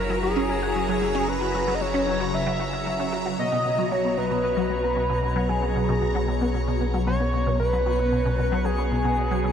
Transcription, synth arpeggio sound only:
0.10 F#3
0.23 F#3
0.36 C#4
0.49 C#4
0.62 F#4
0.76 F#3
0.89 F#3
1.02 F#3
1.15 C#4
1.28 C#4
1.41 F#4
1.54 F#3
1.68 F#3
1.81 F#3
1.94 C#4
2.07 C#4
2.20 F#4
2.33 F#3
2.47 F#3
2.60 F#4
2.73 C#4
2.86 F#3
3.00 C#4
3.13 F#4
3.26 F#4
3.39 B2
3.52 B2
3.65 B2
3.78 F#3
3.92 F#3
4.05 B3
4.18 B2
4.31 B2
4.44 B2
4.57 F#3
4.70 F#3
4.83 B3
4.96 B2
5.10 B2
5.23 B2
5.36 F#3
5.49 F#3
5.62 B3
5.76 B2
5.89 B2
6.02 B2
6.15 F#3
6.28 F#3
6.41 B3
6.54 B2
6.68 B2
6.81 B2
6.94 F#3
7.07 F#3
7.20 B3
7.34 B2
7.47 B2
7.60 B2
7.73 F#3
7.86 F#3
7.99 B3
8.12 B2
8.25 B2
8.39 B2
8.52 F#3
8.65 F#3
8.78 B3
8.92 B2
9.05 B2
9.18 B2
9.31 F#3
9.44 F#3

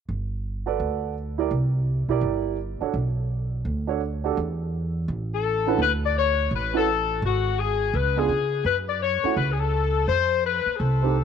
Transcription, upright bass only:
0.09 G1
0.80 D2
1.51 C2
2.08 B1
2.21 G1
2.81 muted upright bass stroke
2.94 B1
3.65 D2
4.37 E2
5.08 A1
5.78 D2
6.51 A1
7.22 G#1
7.94 C#2
8.29 C#3
8.64 F#2
9.24 muted upright bass stroke
9.36 C#2
10.08 F2
10.66 muted upright bass stroke
10.80 C2

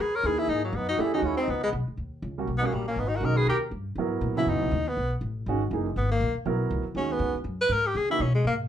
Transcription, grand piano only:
0.25 E3 A#3 D#4 G#4
0.98 E3 A3 D4 G4
1.14 D#3 G#3 C#4 F#4
2.38 G3 A#3 C#4 F#4
2.62 G3 A#3 C#4 F#4
3.22 D#3 G#3 C#4 F#4
3.98 F#3 B3 E4 A#4
4.37 C#3 F#3 B3 E4
5.48 D#3 G#3 C#4 F#4
5.72 E3 A#3 D#4 G#4
6.46 F#3 B3 E4 A#4
6.95 D#3 G#3 C#4 F#4
8.10 E3 A#3 D#4 F#4

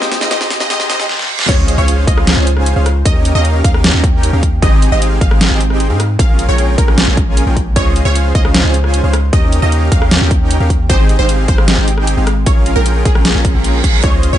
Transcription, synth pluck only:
Already playing: D#5
0.21 D#5
0.31 D#5
0.61 D#5
0.70 D#5
0.89 D#5
1.49 C#5
1.78 C#5
2.08 D#5
3.05 D#5
3.35 D#5
3.65 F5
4.62 D#5
4.92 D#5
5.21 F5
6.19 F5
6.49 C#5
6.78 A#4
7.76 C#5
8.05 C#5
8.35 D#5
9.33 D#5
9.62 D#5
9.92 F5
10.89 C5
11.19 C5
11.48 C5
12.46 C#5
12.76 A#4
13.06 G#4
14.04 C#5
14.33 C#5

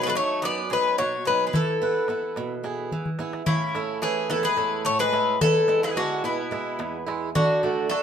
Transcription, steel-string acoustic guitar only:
Already playing: B2 F#3 B3 D#4
0.16 F#3 B3 D#4
0.44 F#2
0.72 F#3 B3 D#4
0.99 B2
1.27 F#3 B3 D#4
1.54 E3
1.82 B3 E4 B4
2.09 B3 E4 B4
2.37 B2
2.64 B3 E4 G#4
2.92 E3
3.19 B3 E4 G#4
3.47 A2
3.75 A3 C#4 E4
4.02 A3 C#4 E4
4.30 E2
4.57 A3 C#4 E4
4.86 A2
5.12 A3 C#4 E4
5.41 E2
5.68 G#3 B3 E4
5.96 G#3 B3 E4
6.24 B2
6.51 G#3 B3 E4
6.79 E2
7.06 G#3 B3 E4
7.35 D3
7.63 A3 D4 F#4
7.90 A3 D4 F#4

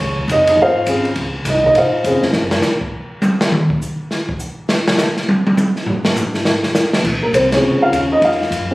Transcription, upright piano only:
Already playing: C#5
0.31 D#4 D#5
0.49 D#4 D#5
0.62 F4 C5 C#5 F5
0.89 C4 C#4 F4 G#4
1.49 D#4 D#5
1.66 D#4 D#5
1.74 E5
1.78 F4 C5 C#5 F5
2.05 C4 C#4 F4 G#4
7.23 A#3 A#4
7.35 C4 C5
7.53 C4 C#4 F4 G#4 C#5
7.82 F4 F5
7.94 C#4 C#5
8.12 D#4 D#5
8.25 F4 F5
8.71 C4 C#4

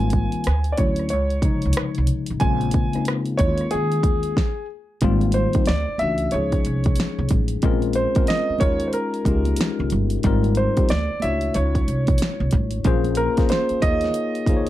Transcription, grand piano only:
Already playing: G#5
0.72 D5
0.77 C#5
1.10 C#5
2.40 G#5
3.37 C#5
3.71 G#4
5.34 C5
5.67 D5
5.99 E5
6.32 C#5
7.95 C5
8.28 D#5
8.60 C#5
8.88 C5
8.93 A#4
10.57 C5
10.90 D5
11.22 E5
11.55 C#5
13.17 A#4
13.50 C5
13.82 D#5

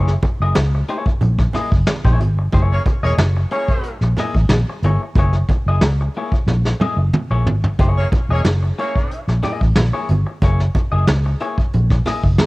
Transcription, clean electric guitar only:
Already playing: A#3 E4 G#4 C#5
0.25 muted clean electric guitar stroke
0.42 A#3 E4 G#4 D#5
0.57 muted clean electric guitar stroke
0.75 muted clean electric guitar stroke
0.89 A#3 E4 G#4 C#5
1.07 muted clean electric guitar stroke
1.22 muted clean electric guitar stroke
1.39 muted clean electric guitar stroke
1.55 A#3 E4 G#4 D#5
1.72 muted clean electric guitar stroke
1.88 muted clean electric guitar stroke
2.05 A#3 E4 G#4 C#5
2.20 muted clean electric guitar stroke
2.39 muted clean electric guitar stroke
2.53 A#3 E4 G#4 C#5
2.87 muted clean electric guitar stroke
3.03 A#3 E4 G#4 D#5
3.20 muted clean electric guitar stroke
3.37 muted clean electric guitar stroke
3.52 A#3 E4 G#4 C#5
3.70 muted clean electric guitar stroke
4.03 muted clean electric guitar stroke
4.19 A#3 E4 G#4 D#5
4.37 muted clean electric guitar stroke
4.69 muted clean electric guitar stroke
4.84 A#3 E4 G#4 C#5
5.03 muted clean electric guitar stroke
5.18 A#3 E4 G#4 C#5
5.50 muted clean electric guitar stroke
5.68 A#3 E4 G#4 D#5
5.84 muted clean electric guitar stroke
6.01 muted clean electric guitar stroke
6.17 A#3 E4 G#4 C#5
6.34 muted clean electric guitar stroke
6.67 muted clean electric guitar stroke
6.81 A#3 E4 G#4 D#5
6.99 muted clean electric guitar stroke
7.14 muted clean electric guitar stroke
7.31 A#3 E4 G#4 C#5
7.48 muted clean electric guitar stroke
7.64 muted clean electric guitar stroke
7.80 A#3 E4 G#4 C#5
8.13 muted clean electric guitar stroke
8.31 A#3 E4 G#4 D#5
8.46 muted clean electric guitar stroke
8.63 muted clean electric guitar stroke
8.79 A#3 E4 G#4 C#5
8.96 muted clean electric guitar stroke
9.29 muted clean electric guitar stroke
9.43 A#3 E4 G#4 D#5
9.61 muted clean electric guitar stroke
9.77 muted clean electric guitar stroke
9.93 A#3 E4 G#4 C#5
10.10 muted clean electric guitar stroke
10.26 muted clean electric guitar stroke
10.43 A#3 E4 G#4 C#5
10.75 muted clean electric guitar stroke
10.92 A#3 E4 G#4 D#5
11.26 muted clean electric guitar stroke
11.41 A#3 E4 G#4 C#5
11.58 muted clean electric guitar stroke
11.91 muted clean electric guitar stroke
12.06 A#3 E4 G#4 D#5
12.24 muted clean electric guitar stroke
12.38 muted clean electric guitar stroke

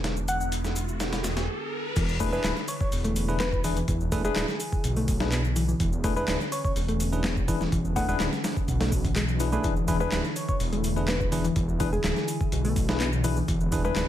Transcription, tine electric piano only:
Already playing: D4 E4 G#4 B4
2.20 D4 E4 G#4 B4
2.33 D4 E4 G#4 B4
3.29 D4 E4 G#4 B4
3.64 D4 E4 G#4 B4
4.12 D4 E4 G#4 B4
4.24 D4 E4 G#4 B4
5.20 D4 E4 G#4 B4
6.04 D4 E4 G#4 B4
6.16 D4 E4 G#4 B4
7.12 D4 E4 G#4 B4
7.48 D4 E4 G#4 B4
7.96 D4 E4 G#4 B4
8.09 D4 E4 G#4 B4
9.40 D4 E4 G#4 B4
9.52 D4 E4 G#4 B4
9.88 D4 E4 G#4 B4
10.00 D4 E4 G#4 B4
10.96 D4 E4 G#4 B4
11.32 D4 E4 G#4 B4
11.80 D4 E4 G#4 B4
12.89 D4 E4 G#4 B4
13.24 D4 E4 G#4 B4
13.72 D4 E4 G#4 B4
13.85 D4 E4 G#4 B4

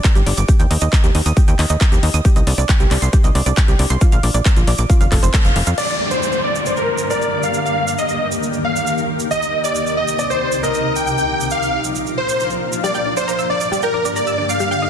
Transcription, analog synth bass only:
0.16 G1
0.27 G1
0.38 G1
0.60 D#2
0.71 D#2
0.82 D#2
1.04 D#2
1.15 D#2
1.26 D#2
1.48 D#2
1.59 D#2
1.70 D#2
1.92 D#2
2.03 D#2
2.14 D#2
2.36 C2
2.47 C2
2.58 C2
2.80 C2
2.91 C2
3.02 C2
3.24 C2
3.35 C2
3.46 C2
3.68 C2
3.79 C2
3.90 C2
4.12 A#1
4.23 A#1
4.34 A#1
4.57 A#1
4.67 A#1
4.79 A#1
5.01 F1
5.12 F1
5.23 F1
5.45 F1
5.56 F1
5.67 F2

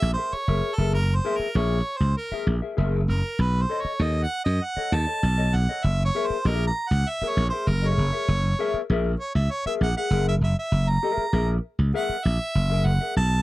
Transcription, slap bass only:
0.02 A#1
0.33 muted slap bass stroke
0.48 F#1
0.78 F#1
0.93 F#1
1.39 muted slap bass stroke
1.55 A#1
2.00 C#2
2.31 muted slap bass stroke
2.47 A#1
2.78 F#1
3.08 F#1
3.39 B1
3.85 muted slap bass stroke
3.99 D#2
4.46 F#2
4.77 muted slap bass stroke
4.92 D#2
5.23 B1
5.54 B1
5.84 F#1
6.30 muted slap bass stroke
6.45 A#1
6.91 C#2
7.21 muted slap bass stroke
7.37 A#1
7.67 F#1
7.98 F#1
8.28 F#1
8.74 muted slap bass stroke
8.90 A#1
9.35 C#2
9.66 muted slap bass stroke
9.81 A#1
10.10 F#1
10.41 F#1
10.72 F#1
11.17 muted slap bass stroke
11.33 A#1
11.79 C#2
12.09 muted slap bass stroke
12.25 A#1
12.55 F#1
12.85 F#1
13.16 B1

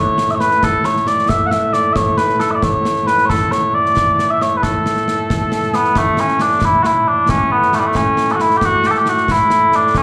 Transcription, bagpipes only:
Already playing: A2 A3 C#5
0.31 E5
0.35 C#5
0.40 B4
0.64 A4
0.85 C#5
1.08 D5
1.29 E5
1.46 F#5
1.51 E5
1.73 D5
1.93 C#5 E5
2.17 B4
2.40 A4
2.51 D5 E5
2.63 C#5
3.07 B4
3.25 C#5
3.30 A4
3.52 C#5
3.74 D5
4.30 E5
4.42 C#5
4.57 B4
4.63 A4
5.75 B3
5.98 A3
6.20 C#4
6.42 D4
6.65 E4
6.83 E4 F#4
7.08 D4
7.30 C#4
7.51 B3
7.74 A3
7.79 G3
7.86 A3
7.96 C#4
8.32 F#4 A4
8.41 E4
8.57 G4
8.65 F#4
8.86 G4
8.91 A4
8.97 G4
9.09 F#4
9.32 E4
9.76 D4
9.97 C#4

